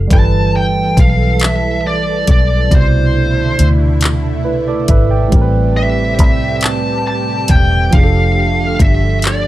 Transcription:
0.07 2.68 E3 medium
0.07 2.67 E3 medium
0.07 2.66 G3 medium
0.07 7.89 A3 medium
0.07 2.68 A4 medium
0.07 kick loud
0.07 closed hi-hat medium
0.11 0.94 G1 medium
0.11 2.68 A4 medium
0.11 2.69 B4 medium
0.11 0.56 A5 loud
0.56 1.00 G5 medium
0.97 2.24 B1 medium
0.97 1.43 F5 medium
0.97 kick loud
0.97 closed hi-hat medium
1.40 1.87 E5 medium
1.40 clap loud
1.40 closed hi-hat medium
1.87 2.26 D5 medium
2.27 2.68 B1 medium
2.27 2.74 D5 medium
2.27 kick medium
2.27 closed hi-hat medium
2.68 5.27 B2 medium
2.68 5.26 C3 medium
2.68 5.30 D3 medium
2.68 5.30 E4 medium
2.68 kick loud
2.68 closed hi-hat medium
2.72 3.55 C2 loud
2.72 4.42 E4 medium
2.72 3.67 C5 medium
2.72 4.44 D5 medium
3.59 4.47 D2 medium
3.59 closed hi-hat medium
4.01 clap loud
4.01 closed hi-hat medium
4.44 4.85 C2 medium
4.44 4.66 E4 soft
4.44 4.65 B4 medium
4.68 4.88 A4 medium
4.68 4.88 D5 medium
4.88 5.29 G#1 medium
4.88 5.10 B4 medium
4.88 5.10 E5 medium
4.88 kick medium
4.88 closed hi-hat medium
5.11 5.52 D5 medium
5.11 5.52 G5 medium
5.28 7.87 A2 medium
5.28 7.88 G3 medium
5.32 6.20 A1 loud
5.32 7.90 C3 medium
5.32 7.89 C4 medium
5.32 9.47 G4 medium
5.32 5.40 A#4 medium
5.32 kick loud
5.32 closed hi-hat medium
5.41 7.94 B4 medium
5.77 6.66 E5 medium
6.19 7.46 C2 medium
6.19 kick medium
6.19 closed hi-hat medium
6.61 7.06 A5 medium
6.61 clap loud
6.61 closed hi-hat medium
7.07 7.50 A5 loud
7.48 7.89 E1 medium
7.48 7.95 G5 loud
7.48 kick medium
7.48 closed hi-hat medium
7.90 8.76 F1 loud
7.90 9.47 D3 medium
7.90 9.47 F3 medium
7.90 9.47 A3 medium
7.90 9.47 D4 medium
7.90 8.76 F5 loud
7.90 kick loud
7.90 closed hi-hat medium
7.95 9.47 G4 medium
7.95 8.01 G#4 medium
8.03 9.47 A4 medium
8.79 9.47 G1 medium
8.79 9.21 E5 medium
8.79 kick loud
8.79 closed hi-hat medium
9.22 clap loud
9.22 closed hi-hat medium
9.26 9.47 D5 medium

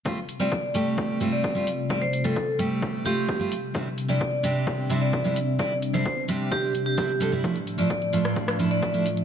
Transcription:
0.05 3.71 C3 medium
0.05 0.18 G3 medium
0.05 7.40 G3 medium
0.05 0.18 A3 medium
0.05 3.71 A3 medium
0.05 0.18 C4 medium
0.05 3.71 F4 medium
0.05 0.18 F4 medium
0.05 kick loud
0.29 open hi-hat medium
0.40 0.53 G3 medium
0.40 0.53 A3 medium
0.40 0.53 C4 medium
0.40 0.53 F4 medium
0.40 0.86 D5 medium
0.52 kick loud
0.74 1.18 G3 medium
0.74 1.18 A3 medium
0.74 1.18 C4 medium
0.74 1.18 G4 loud
0.74 open hi-hat medium
0.98 kick loud
1.20 1.53 G3 medium
1.20 1.53 A3 medium
1.20 1.53 C4 medium
1.20 1.53 F4 medium
1.20 open hi-hat medium
1.33 1.67 D5 medium
1.44 kick loud
1.55 1.68 G3 medium
1.55 1.68 A3 medium
1.55 1.68 C4 medium
1.55 1.68 F4 medium
1.67 open hi-hat medium
1.89 2.02 G3 medium
1.89 2.03 A3 medium
1.89 2.03 C4 medium
1.89 2.03 F4 medium
1.89 1.99 D5 medium
1.89 kick loud
2.02 2.22 C5 medium
2.13 open hi-hat loud
2.24 2.37 G3 loud
2.24 2.37 A3 medium
2.24 2.38 C4 medium
2.24 2.38 F4 medium
2.24 2.59 A4 medium
2.36 kick loud
2.59 3.02 G3 medium
2.59 3.03 A3 medium
2.59 3.03 C4 medium
2.59 3.03 G4 loud
2.59 open hi-hat loud
2.82 kick loud
3.05 3.37 G3 medium
3.05 3.37 A3 medium
3.05 3.37 C4 medium
3.05 3.38 F4 medium
3.05 3.40 G4 medium
3.05 open hi-hat loud
3.29 kick loud
3.39 3.52 G3 medium
3.39 3.53 A3 medium
3.39 3.53 C4 medium
3.39 3.53 F4 medium
3.52 open hi-hat loud
3.74 3.87 C3 medium
3.74 7.40 C3 medium
3.74 3.87 G3 medium
3.74 3.87 C4 medium
3.74 9.24 D4 medium
3.74 3.88 D4 medium
3.74 3.88 E4 medium
3.74 9.24 E5 medium
3.74 kick loud
3.98 open hi-hat loud
4.08 4.22 C3 medium
4.08 4.22 G3 medium
4.08 4.22 C4 medium
4.08 4.22 D4 medium
4.08 4.22 E4 loud
4.08 4.56 D5 medium
4.21 kick loud
4.43 4.87 C3 medium
4.43 4.87 G3 medium
4.43 4.87 C4 medium
4.43 4.88 D4 medium
4.43 4.88 G4 loud
4.43 open hi-hat loud
4.67 kick loud
4.89 5.22 C3 medium
4.89 5.22 G3 medium
4.89 5.22 C4 medium
4.89 5.22 D4 medium
4.89 5.22 E4 medium
4.89 open hi-hat loud
5.02 5.36 D5 medium
5.13 kick loud
5.24 5.37 C3 medium
5.24 5.37 G3 medium
5.24 5.37 C4 medium
5.24 5.38 D4 medium
5.24 5.38 E4 medium
5.36 open hi-hat loud
5.59 5.72 C3 medium
5.59 5.72 G3 medium
5.59 5.72 C4 medium
5.59 5.72 D4 medium
5.59 5.72 E4 medium
5.59 5.69 D5 medium
5.59 kick loud
5.82 open hi-hat loud
5.93 6.06 C3 medium
5.93 6.07 G3 medium
5.93 6.07 C4 medium
5.93 6.07 D4 medium
5.93 6.07 E4 loud
5.93 6.01 C5 medium
6.06 6.13 C5 medium
6.06 kick loud
6.28 6.72 C3 medium
6.28 6.72 G3 medium
6.28 6.72 C4 medium
6.28 6.72 D4 medium
6.28 6.72 G4 loud
6.28 open hi-hat loud
6.52 6.72 G4 medium
6.52 kick loud
6.75 open hi-hat loud
6.86 7.32 G4 medium
6.97 7.10 C3 medium
6.97 7.10 G3 medium
6.97 7.11 C4 medium
6.97 7.11 D4 medium
6.97 7.11 E4 medium
6.97 kick loud
7.20 7.29 G3 medium
7.20 7.30 C4 medium
7.20 7.30 D4 medium
7.20 7.30 A4 loud
7.20 open hi-hat loud
7.32 7.42 G3 medium
7.32 7.42 C4 medium
7.32 7.42 D4 medium
7.32 7.43 E4 medium
7.43 9.24 A2 medium
7.43 7.56 F3 medium
7.43 9.24 F3 medium
7.43 7.57 A3 medium
7.43 7.57 D4 medium
7.43 7.57 E4 medium
7.43 kick loud
7.43 closed hi-hat medium
7.56 closed hi-hat soft
7.67 open hi-hat loud
7.78 7.91 F3 medium
7.78 7.91 A3 medium
7.78 7.91 D4 medium
7.78 7.92 E4 medium
7.78 8.25 D5 medium
7.78 closed hi-hat soft
7.90 kick loud
7.90 closed hi-hat medium
8.02 closed hi-hat soft
8.13 8.56 F3 medium
8.13 8.57 A3 medium
8.13 8.57 D4 medium
8.13 8.57 F4 loud
8.13 open hi-hat medium
8.25 cross-stick medium
8.25 closed hi-hat soft
8.36 kick loud
8.36 closed hi-hat medium
8.48 cross-stick medium
8.48 closed hi-hat soft
8.59 8.91 F3 medium
8.59 8.91 A3 medium
8.59 8.91 D4 medium
8.59 8.92 E4 medium
8.59 open hi-hat loud
8.71 9.06 D5 medium
8.71 closed hi-hat soft
8.83 kick loud
8.83 closed hi-hat medium
8.93 9.06 F3 medium
8.93 9.07 A3 medium
8.93 9.07 D4 medium
8.93 9.07 E4 medium
8.93 closed hi-hat soft
9.06 open hi-hat loud
9.17 closed hi-hat soft

